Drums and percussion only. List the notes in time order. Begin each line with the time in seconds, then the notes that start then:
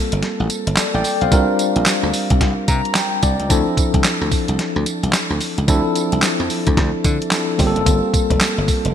0.12 closed hi-hat
0.22 snare, closed hi-hat
0.50 closed hi-hat, tambourine
0.67 closed hi-hat
0.77 snare, clap, closed hi-hat, tambourine
1.04 open hi-hat, tambourine
1.21 closed hi-hat
1.32 kick, closed hi-hat, tambourine
1.59 closed hi-hat, tambourine
1.76 closed hi-hat
1.86 snare, clap, closed hi-hat, tambourine
2.13 open hi-hat, tambourine
2.30 kick, closed hi-hat
2.41 kick, snare, closed hi-hat
2.68 kick, closed hi-hat, tambourine
2.85 closed hi-hat
2.95 snare, clap, closed hi-hat, tambourine
3.23 kick, closed hi-hat, tambourine
3.40 closed hi-hat
3.50 kick, closed hi-hat, tambourine
3.77 kick, closed hi-hat, tambourine
3.94 kick, closed hi-hat
4.04 snare, clap, closed hi-hat, tambourine
4.31 kick, open hi-hat, tambourine
4.48 closed hi-hat
4.59 snare, closed hi-hat
4.86 closed hi-hat, tambourine
5.04 closed hi-hat
5.13 snare, clap, closed hi-hat, tambourine
5.41 open hi-hat, tambourine
5.58 closed hi-hat
5.68 kick, closed hi-hat, tambourine
5.96 closed hi-hat, tambourine
6.12 closed hi-hat
6.22 snare, clap, closed hi-hat, tambourine
6.50 open hi-hat, tambourine
6.67 kick, closed hi-hat
6.77 kick, snare, closed hi-hat
7.04 kick, closed hi-hat, tambourine
7.22 closed hi-hat
7.31 snare, clap, closed hi-hat, tambourine
7.59 kick, open hi-hat, tambourine
7.76 closed hi-hat
7.86 kick, closed hi-hat, tambourine
8.14 kick, closed hi-hat, tambourine
8.30 kick, closed hi-hat
8.41 snare, clap, closed hi-hat, tambourine
8.68 kick, open hi-hat, tambourine
8.85 closed hi-hat